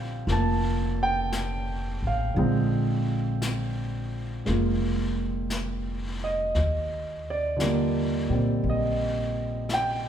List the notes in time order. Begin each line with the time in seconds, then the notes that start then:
Already playing: A#1 D3 F3 G3 C4 F5
0.27 F1 F3 A#3, brush sweep, snare
0.32 A5
1.03 G5
1.32 brush sweep, snare, hi-hat pedal
2.02 A1
2.07 F5
2.34 A#1 D3 F3 G#3, brush sweep
2.39 C4
3.42 brush sweep, snare, hi-hat pedal
4.45 F1 G#3 A#3 F4, brush sweep, snare
5.50 brush sweep, snare, hi-hat pedal
6.24 D#5
6.55 D#2, brush sweep, snare
7.30 D5
7.56 D3 F3 G3, brush sweep, snare, hi-hat pedal
7.62 A#3
8.29 A#2 G3 A#3 C4
8.64 A#1, brush sweep
8.70 D#5
9.69 brush sweep, snare, hi-hat pedal
9.74 G5